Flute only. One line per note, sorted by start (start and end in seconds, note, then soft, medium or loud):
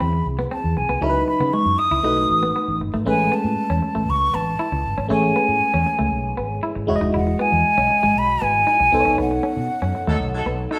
0.00 0.27 B5 medium
0.53 0.79 A5 medium
0.78 1.04 G#5 medium
1.03 1.27 B5 medium
1.28 1.55 B5 medium
1.53 1.80 C#6 medium
1.79 2.81 D#6 loud
3.08 3.35 G#5 medium
3.34 4.11 A5 medium
4.10 4.36 C#6 loud
4.35 5.11 A5 medium
5.12 6.60 G#5 medium
7.16 7.43 F#5 medium
7.41 8.20 G#5 loud
8.18 8.45 B5 loud
8.43 9.19 G#5 medium
9.20 10.68 F#5 loud